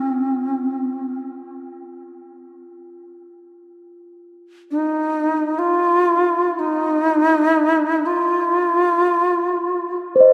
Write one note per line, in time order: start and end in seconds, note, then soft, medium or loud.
0.00 1.17 C4 medium
0.00 1.86 F4 soft
4.71 5.60 D#4 medium
5.59 6.61 F4 medium
6.59 8.07 D#4 medium
8.06 9.95 F4 medium
10.16 10.33 C5 soft
10.21 10.33 D#5 soft